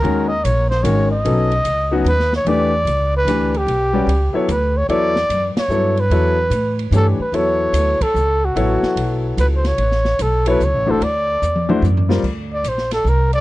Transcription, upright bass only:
X:1
M:3/4
L:1/8
Q:"Swing" 1/4=147
K:Cblyd
V:1 name="Upright bass" clef=bass
E,,2 B,,,2 A,,,2 | =B,,,2 D,,2 ^D,,2 | [K:Edor] E,,2 C,,2 D,,2 | B,,,2 C,, z D,,2 |
E,,2 F,, z G,,2 | E,,2 A,,2 G,, z | E,,2 D,, z C,,2 | A,,, z B,,,2 C,,2 |
A,,,2 B,,,2 (3C,, A,,, F,,, | D,,2 E,,2 F,,2 | [K:Gm] D,,2 B,,,2 C,,2 |]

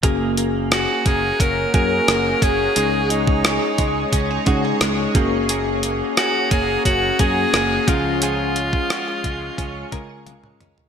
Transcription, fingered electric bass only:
X:1
M:4/4
L:1/16
Q:1/4=88
K:F#
V:1 name="Fingered electric bass" clef=bass
F,,,4- F,,, z F,,,2 F,,,2 F,,2 F,,,2 F,,,2 | C,,4- C,, z C,,2 C,,2 C,2 C,,2 F,,,2- | F,,,4- F,,, z F,,,2 F,,,2 F,,2 F,,,2 C,,2- | C,,4- C,, z C,,2 C,,2 C,2 C,,2 C,,2 |]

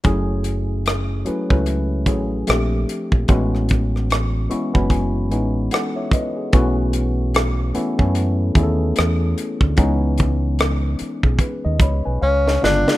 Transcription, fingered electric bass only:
X:1
M:4/4
L:1/16
Q:"Swing 16ths" 1/4=74
K:F#dor
V:1 name="Fingered electric bass" clef=bass
F,,,6 z C,,3 A,,,2 ^A,,,2 z A,,, | A,,,6 z F,,,3 A,,,2 z4 | B,,,6 z F,,3 D,,2 E,,2 z =D,, | C,,6 z B,,, z D,, C,, B,,, C,,2 =G,,, z |]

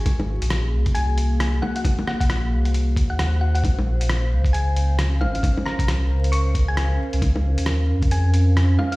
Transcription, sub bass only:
X:1
M:4/4
L:1/16
Q:"Swing 16ths" 1/4=134
K:Bbm
V:1 name="Sub bass" clef=bass
A,,,3 B,,,3 C,,8 z2 | z3 B,,,3 C,,4 E,,6 | B,,,6 D,,8 A,,,2- | A,,, z2 C,,3 D,,8 z D,,- |
D,,3 E,,3 F,,8 z2 |]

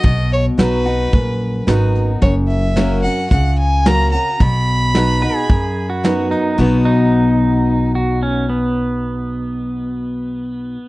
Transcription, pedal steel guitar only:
X:1
M:4/4
L:1/16
Q:1/4=110
K:B
V:1 name="Pedal steel guitar"
z16 | z16 | z6 B G4 F3 D2 | z2 D8 F2 C2 B,2- |
B,16 |]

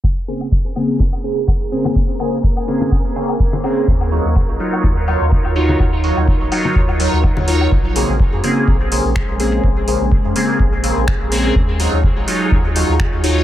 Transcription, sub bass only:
X:1
M:4/4
L:1/16
Q:"Swing 16ths" 1/4=125
K:Bbm
V:1 name="Sub bass" clef=bass
z16 | z16 | E,,3 E,, z B,,, z2 E,,3 E,, z E,,3 | E,,3 E,, z B,,, z2 E,,3 E,, z E,,3 |
B,,,3 B,,, z F,, z2 B,,,3 B,,, z B,,,3 | B,,,3 B,,, z F,, z2 B,,,3 B,,, z B,,,3 | E,,3 E,, z B,,, z2 E,,3 E,, z E,,3 |]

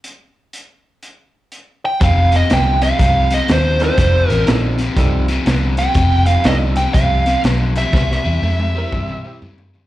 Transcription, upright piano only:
X:1
M:4/4
L:1/8
Q:"Swing" 1/4=121
K:Fmix
V:1 name="Upright piano"
z8 | z6 z [G,CEFA]- | [G,CEFA]2 [G,CEFA] z [G,CEFA] z3 | z2 [G,CEFA] z4 z |
z3 [G,CD=EB] z [G,CDEG] z2 |]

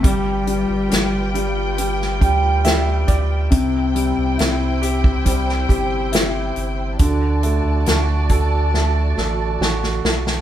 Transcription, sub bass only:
X:1
M:4/4
L:1/16
Q:1/4=69
K:G
V:1 name="Sub bass" clef=bass
G,,,3 G,,, G,,,6 D,,4 D,,2 | C,,3 C,, C,,6 G,,,4 G,,,2 | D,,3 D,, D,,6 A,,,2 A,,,2 B,,,2 |]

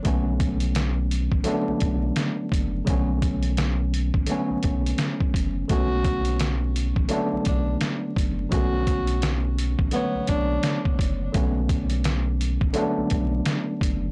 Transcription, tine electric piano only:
X:1
M:4/4
L:1/8
Q:"Swing 16ths" 1/4=85
K:Bm
V:1 name="Tine electric piano"
[D,F,A,B,C]2 z2 [D,F,A,B,D]2 z2 | [C,D,F,A,B,C]2 z2 [D,F,A,B,C]2 z2 | [D,F,A,B,C]2 z2 [D,F,A,B,D]2 z2 | [C,D,F,A,B,C]2 z2 [D,F,A,B,c]2 z2 |
[D,F,A,B,C]2 z2 [D,F,A,B,D]2 z2 |]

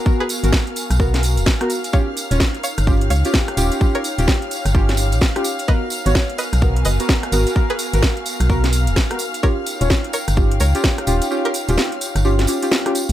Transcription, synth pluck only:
X:1
M:4/4
L:1/16
Q:"Swing 16ths" 1/4=128
K:G#dor
V:1 name="Synth pluck"
z [GB] z12 z2 | [ce] z4 z [ce]2 z2 [ce] z4 z | z [Ac] z12 z2 | [Bd] z4 z [Bd]2 z2 [Bd] z4 z |
z [GB] z12 z2 | [Ac] z4 z [Ac]2 z2 [Ac] z4 z | z [=GA] z12 z2 |]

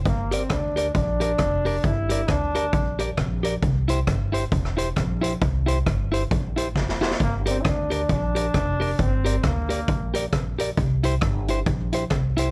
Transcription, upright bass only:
X:1
M:4/4
L:1/8
Q:"Swing" 1/4=134
K:Gdor
V:1 name="Upright bass" clef=bass
G,,,2 D,,2 B,,,2 F,,,2 | G,,,2 D,,2 B,,,2 B,,,2 | C,,2 G,,,2 E,,,2 B,,,2 | C,,2 G,,,2 B,,,2 F,,,2 |
G,,,2 D,,2 B,,,2 F,,,2 | G,,,2 D,,2 B,,,2 B,,,2 | C,,2 G,,,2 B,,,2 C,,2 |]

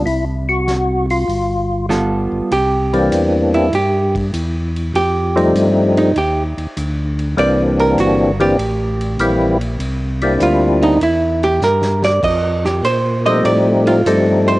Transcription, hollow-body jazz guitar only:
X:1
M:4/4
L:1/8
Q:"Swing" 1/4=99
K:Cmix
V:1 name="Hollow-body jazz guitar"
z6 [G,=B,FA]2 | G3 E G z3 | G3 _E G z3 | d B ^F G4- G |
z2 F _E =E G B d | _e G c e d F A c |]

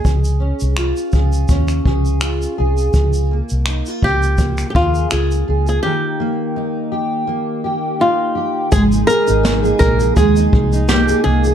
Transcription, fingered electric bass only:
X:1
M:4/4
L:1/16
Q:"Swing 16ths" 1/4=83
K:Ab
V:1 name="Fingered electric bass" clef=bass
D,,3 C,,2 z D,,2 E,,2 D,,4 C,,2 | D,,3 C,,2 z D,,4 E,,2 D,,2 D,,2 | z16 | A,,,2 z A,,,3 B,,,2 E,,2 C,,4 C,,2 |]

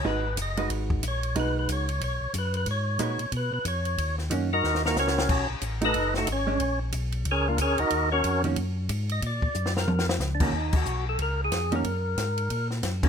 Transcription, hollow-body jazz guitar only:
X:1
M:4/4
L:1/8
Q:"Swing" 1/4=183
K:Ebm
V:1 name="Hollow-body jazz guitar"
[A,EGc] z2 [A,EGc]3 z2 | [A,EGc]3 z4 z | z2 [A,EGc] z4 z | z2 [E,B,DG] z4 z |
z3 [=A,^D^F] z3 [_A,_D=D] | z8 | z3 [E,B,DG] z4 | z6 z [E,B,DG] |
z6 z [E,B,DG] | z6 z [E,B,DG] |]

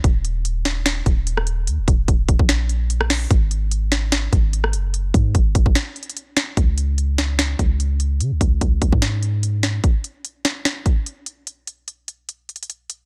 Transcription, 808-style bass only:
X:1
M:4/4
L:1/16
Q:1/4=147
K:Ebdor
V:1 name="808-style bass" clef=bass
E,,,8- E,,,2 E,,,6 | E,, E,,, E,,,2 E,,,2 E,,, B,,,8- B,,, | A,,,8- A,,,2 A,,,4 G,,,2- | G,,,2 A,,2 A,,,2 A,,, A,,, z8 |
D,,8- D,,2 D,,6 | D, D,, D,,2 D,,2 D,, A,,8- A,, | z16 | z16 |]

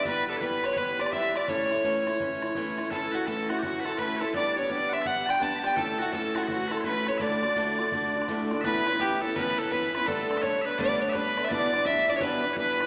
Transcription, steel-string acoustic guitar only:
X:1
M:4/4
L:1/8
Q:"Swing" 1/4=168
K:Amix
V:1 name="Steel-string acoustic guitar"
[E,G,B,G] [G,B,G] [E,G,B,G] [G,B,G] [E,G,B,G] [G,B,G] [E,G,B,G] [G,B,G] | [A,,E,A,CE] [A,CE] [A,,E,A,CE] [A,CE] [E,A,CE] [A,CE] [A,,E,A,CE] [A,CE] | [A,,E,A,CE] [A,CE] [A,,E,A,CE] [A,CE] [E,A,CE] [A,CE] [A,,E,A,CE] [A,CE] | [G,B,DG] [B,DG] [G,B,DG] [B,DG] [G,B,DG] [B,DG] [G,B,DG] [B,DG] |
[A,,E,A,CE] [A,CE] [A,,E,A,CE] [A,CE] [E,A,CE] [A,CE] [A,,E,A,CE] [A,CE] | [D,,A,,D,A,DF] [D,A,DF] [D,,A,,D,A,DF] [D,A,DF] [D,A,DF] [D,A,DF] [D,,A,,D,A,DF] [D,A,DF] | [A,,E,B,CE] [B,CE] [E,B,CE] [B,CE] [A,,E,B,CE] [B,CE] [E,B,CE] [B,CE] | [G,A,B,D] [A,B,D] [G,A,B,D] [A,B,D] [G,A,B,D] [A,B,D] [G,A,B,D] [A,B,D] |
[E,,B,,E,G,B,D] [E,G,B,D] [E,G,B,D] [E,G,B,D] [E,,B,,E,G,B,D] [E,G,B,D] [E,G,B,D] [E,G,B,D] |]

